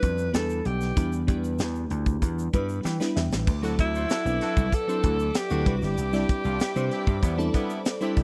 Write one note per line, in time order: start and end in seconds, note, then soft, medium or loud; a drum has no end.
0.00 0.28 F2 medium
0.00 0.33 G3 medium
0.00 0.33 B3 medium
0.00 0.33 D4 medium
0.00 0.34 E4 medium
0.00 0.30 B4 loud
0.00 0.34 B4 medium
0.00 0.11 D5 medium
0.00 kick medium
0.00 closed hi-hat medium
0.00 shaker soft
0.18 shaker soft
0.33 0.60 E2 medium
0.33 0.73 G3 medium
0.33 0.73 B3 medium
0.33 0.74 D4 medium
0.33 0.74 E4 medium
0.33 0.68 A4 medium
0.33 0.74 B4 medium
0.33 snare loud
0.33 closed hi-hat loud
0.33 shaker medium
0.50 shaker soft
0.65 0.91 B1 medium
0.65 1.28 G4 medium
0.65 closed hi-hat medium
0.81 snare soft
0.81 shaker medium
0.96 1.22 E2 loud
0.96 1.16 G3 medium
0.96 1.16 B3 medium
0.96 1.17 D4 medium
0.96 1.17 E4 medium
0.96 1.17 B4 medium
0.96 kick loud
0.96 closed hi-hat medium
0.96 shaker medium
1.13 shaker medium
1.27 1.54 E2 medium
1.27 2.08 G3 medium
1.27 2.08 B3 medium
1.27 2.08 D4 medium
1.27 2.08 E4 medium
1.27 2.08 G4 medium
1.27 kick medium
1.27 closed hi-hat medium
1.27 shaker soft
1.44 shaker medium
1.59 1.85 E2 medium
1.59 snare loud
1.59 closed hi-hat medium
1.59 shaker medium
1.75 shaker soft
1.90 2.16 D2 medium
1.90 closed hi-hat medium
1.90 shaker soft
2.06 kick medium
2.06 shaker soft
2.22 2.48 E2 medium
2.22 kick medium
2.22 closed hi-hat medium
2.22 shaker medium
2.39 shaker medium
2.53 2.79 G2 medium
2.53 2.83 G3 medium
2.53 2.83 B3 medium
2.53 2.83 D4 medium
2.53 2.84 E4 medium
2.53 2.84 B4 medium
2.53 kick medium
2.53 closed hi-hat medium
2.53 shaker soft
2.69 shaker soft
2.85 2.97 E3 loud
2.85 3.14 G5 medium
2.85 snare medium
2.85 shaker medium
3.00 3.47 G3 medium
3.00 3.47 B3 medium
3.00 3.47 D4 medium
3.00 3.47 E4 medium
3.00 3.47 B4 loud
3.00 snare medium
3.00 shaker soft
3.16 3.29 E2 medium
3.16 3.45 E5 medium
3.16 snare medium
3.16 shaker soft
3.32 3.45 A1 medium
3.32 snare medium
3.32 shaker medium
3.47 3.73 D2 loud
3.47 8.23 D5 medium
3.47 8.23 E5 medium
3.47 5.64 F#5 medium
3.47 8.23 D6 medium
3.47 kick loud
3.47 crash medium
3.47 shaker medium
3.62 4.02 F#3 medium
3.62 4.03 C4 medium
3.62 4.03 D4 medium
3.62 4.03 E4 medium
3.62 3.76 E4 medium
3.62 3.76 F#4 medium
3.62 4.03 A4 medium
3.62 3.76 A4 medium
3.62 snare soft
3.62 shaker medium
3.79 4.04 D2 loud
3.79 4.76 E4 medium
3.79 kick medium
3.79 closed hi-hat medium
3.95 4.07 F#4 medium
3.95 4.07 A4 medium
3.95 4.07 C5 medium
3.95 shaker medium
4.10 4.23 E4 medium
4.10 4.23 F#4 medium
4.10 4.22 A4 loud
4.10 snare loud
4.10 closed hi-hat medium
4.10 shaker medium
4.25 4.38 B1 medium
4.25 4.65 F#3 medium
4.25 4.65 C4 medium
4.25 4.65 D4 medium
4.25 4.66 E4 medium
4.25 4.66 B4 medium
4.25 shaker soft
4.41 4.67 E4 loud
4.41 4.67 F#4 loud
4.41 4.67 A4 loud
4.41 snare soft
4.41 closed hi-hat medium
4.57 4.69 C2 medium
4.57 kick medium
4.57 shaker medium
4.72 5.39 A4 loud
4.72 kick medium
4.72 closed hi-hat medium
4.72 shaker medium
4.87 5.28 F#3 medium
4.87 5.28 C4 medium
4.87 5.28 D4 medium
4.87 5.28 E4 medium
4.87 5.01 F#4 medium
4.87 5.28 A4 medium
4.87 5.01 A4 medium
4.87 5.01 C5 medium
4.87 shaker medium
5.03 5.29 D2 medium
5.03 5.17 E4 medium
5.03 5.16 F#4 medium
5.03 5.16 A4 medium
5.03 kick medium
5.03 closed hi-hat medium
5.03 shaker soft
5.19 shaker soft
5.35 5.76 G4 loud
5.35 snare loud
5.35 closed hi-hat loud
5.35 shaker medium
5.50 5.66 D2 medium
5.50 5.66 F#3 medium
5.50 5.75 B3 medium
5.50 5.65 C4 medium
5.50 5.75 D4 medium
5.50 5.65 D4 medium
5.50 5.65 E4 medium
5.50 5.75 F#4 loud
5.50 5.67 A4 medium
5.50 shaker soft
5.66 5.79 C2 medium
5.66 6.04 G3 medium
5.66 6.04 C4 medium
5.66 6.04 D4 medium
5.66 6.04 E4 medium
5.66 6.04 B4 medium
5.66 8.23 B5 medium
5.66 kick loud
5.66 closed hi-hat medium
5.78 5.85 F#4 medium
5.82 5.95 G1 medium
5.82 7.71 G4 medium
5.82 snare soft
5.82 shaker medium
5.98 6.23 C2 loud
5.98 closed hi-hat medium
5.98 shaker medium
6.12 6.53 G3 medium
6.12 6.53 C4 medium
6.12 6.26 D4 medium
6.12 6.53 D4 medium
6.12 6.26 E4 medium
6.12 6.53 E4 medium
6.12 6.26 G4 medium
6.12 6.53 D5 medium
6.12 snare soft
6.12 shaker medium
6.29 kick medium
6.29 closed hi-hat medium
6.44 6.57 C2 medium
6.44 6.57 D4 medium
6.44 6.57 F4 medium
6.44 6.57 A4 medium
6.44 shaker medium
6.60 6.73 D4 medium
6.60 6.73 E4 medium
6.60 6.73 G4 loud
6.60 muted slap bass stroke soft
6.60 snare loud
6.60 closed hi-hat medium
6.60 shaker medium
6.75 6.89 C3 loud
6.75 7.16 G3 medium
6.75 7.16 C4 medium
6.75 7.16 D4 medium
6.75 7.16 E4 medium
6.75 7.16 C5 medium
6.75 shaker medium
6.91 7.17 D4 loud
6.91 7.17 E4 loud
6.91 7.17 G4 loud
6.91 closed hi-hat medium
7.07 7.20 G2 medium
7.07 kick medium
7.07 shaker soft
7.23 7.48 E2 loud
7.23 7.36 G3 medium
7.23 7.36 B3 medium
7.23 7.36 E4 loud
7.23 kick medium
7.23 closed hi-hat medium
7.23 shaker medium
7.38 7.78 G3 medium
7.38 7.78 C4 medium
7.38 7.78 D4 medium
7.38 7.78 E4 medium
7.38 7.79 A4 loud
7.38 shaker soft
7.54 7.79 G3 loud
7.54 7.79 B3 loud
7.54 7.79 E4 loud
7.54 kick medium
7.54 closed hi-hat medium
7.54 shaker soft
7.70 shaker soft
7.85 snare loud
7.85 closed hi-hat loud
7.85 shaker medium
8.01 8.23 G3 medium
8.01 8.23 C4 medium
8.01 8.23 D4 medium
8.01 8.23 E4 medium
8.01 8.23 G4 loud
8.01 8.23 C5 loud
8.01 shaker soft
8.17 8.23 C2 medium
8.17 kick medium
8.17 closed hi-hat medium